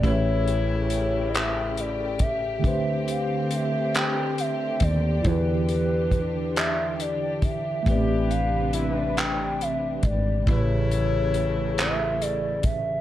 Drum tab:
HH |xxxxxx|xxxxxx|xxxxxx|xxxxxx|
CP |---x--|---x--|---x--|---x--|
BD |o----o|o----o|o-o--o|o----o|

HH |xxxxxx|
CP |---x--|
BD |o----o|